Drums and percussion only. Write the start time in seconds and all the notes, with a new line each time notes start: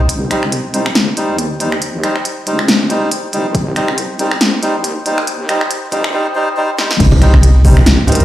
0.09 closed hi-hat
0.31 finger snap, closed hi-hat
0.43 finger snap
0.52 closed hi-hat
0.74 closed hi-hat
0.86 finger snap
0.95 snare, closed hi-hat
1.17 closed hi-hat
1.39 closed hi-hat
1.60 closed hi-hat
1.72 finger snap
1.82 closed hi-hat
2.04 finger snap, closed hi-hat
2.16 finger snap
2.25 closed hi-hat
2.47 closed hi-hat
2.59 finger snap
2.68 snare, closed hi-hat
2.90 closed hi-hat
3.12 closed hi-hat
3.33 closed hi-hat
3.55 kick, closed hi-hat
3.76 finger snap, closed hi-hat
3.88 finger snap
3.98 closed hi-hat
4.19 closed hi-hat
4.31 finger snap
4.41 snare, closed hi-hat
4.63 closed hi-hat
4.84 closed hi-hat
5.06 closed hi-hat
5.18 finger snap
5.27 closed hi-hat
5.49 finger snap, closed hi-hat
5.61 finger snap
5.71 closed hi-hat
5.92 kick, closed hi-hat
6.04 finger snap
6.78 snare
6.91 snare
7.00 kick, closed hi-hat, crash
7.12 low conga
7.22 finger snap, closed hi-hat
7.34 finger snap, kick
7.43 closed hi-hat
7.65 kick, open hi-hat
7.77 finger snap, low conga
7.86 snare, closed hi-hat
8.07 closed hi-hat, low conga
8.12 closed hi-hat
8.15 closed hi-hat
8.20 closed hi-hat